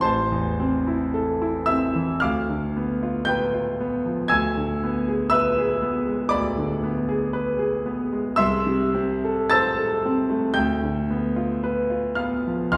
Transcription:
0.01 A1 C5 A5 C6
0.32 E2
0.60 C4
0.87 E4
1.14 A4
1.42 E4
1.66 C4 E5 E6
1.96 E3
2.20 D2 F5 D6 F6
2.50 D3
2.77 B3
3.03 F4
3.25 B4 G5 G6
3.54 F4
3.80 B3
4.05 F3
4.28 D2 G#5 E6 G#6
4.57 D3
4.84 B3
5.08 G#4
5.30 B4 E5 B5 E6
5.58 G#4
5.82 B3
6.07 G#3
6.29 D2 D5 B5 D6
6.58 D3
6.84 B3
7.09 G#4
7.33 B4
7.59 G#4
7.86 B3
8.13 G#3
8.36 C2 E5 C6 E6
8.67 C3
8.95 C4
9.24 A4
9.50 C5 A5 E6 A6
9.79 A4
10.06 C4
10.30 A3
10.54 D2 G5 G6
10.84 D3
11.10 B3
11.36 F4
11.64 B4
11.90 F4
12.15 B3 F5 F6
12.47 F3
12.72 E2 F5 C6 F6

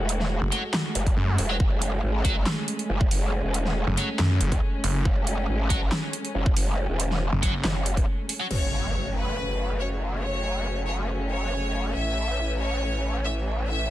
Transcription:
Already playing: G#3 A3 F#4
0.00 E1
0.09 closed hi-hat
0.20 snare
0.42 F#1
0.52 F#4 C#5 F#5, closed hi-hat
0.74 snare, clap
0.95 F#1, closed hi-hat
1.06 kick, closed hi-hat
1.17 F#2
1.38 E1, open hi-hat
1.49 F#4 C#5 F#5
1.60 F#1 C#4, kick
1.82 closed hi-hat
2.03 G#1
2.25 F#4 C#5 F#5, kick, closed hi-hat
2.46 snare, clap
2.68 closed hi-hat
2.79 closed hi-hat
2.89 F#1
3.01 kick
3.11 F#1, open hi-hat
3.44 E1
3.54 closed hi-hat
3.66 snare
3.87 F#1
3.97 F#4 C#5 F#5, closed hi-hat
4.19 F#2, snare, clap
4.41 F#1, closed hi-hat
4.52 C#2, kick, closed hi-hat
4.84 F#1, open hi-hat
5.05 F#1, kick
5.27 closed hi-hat
5.49 G#1
5.70 F#4 C#5 F#5, kick, closed hi-hat
5.92 snare, clap
6.13 closed hi-hat
6.25 closed hi-hat
6.35 F#1
6.46 kick
6.56 F#1, open hi-hat
6.89 E1
7.00 closed hi-hat
7.11 snare
7.32 F#1
7.42 F#1 F#4 C#5 F#5, kick, closed hi-hat
7.64 F#1, snare, clap
7.86 closed hi-hat
7.97 kick, closed hi-hat
8.29 open hi-hat
8.40 F#4 C#5 F#5
8.51 F#1 F#3 A3 C#4 C#5, crash, impact
9.15 B4
9.80 C#5
10.23 C#5
10.88 C#5
11.31 C#5
11.96 A1 E3 E5
12.61 C#5
13.26 E5
13.69 E5

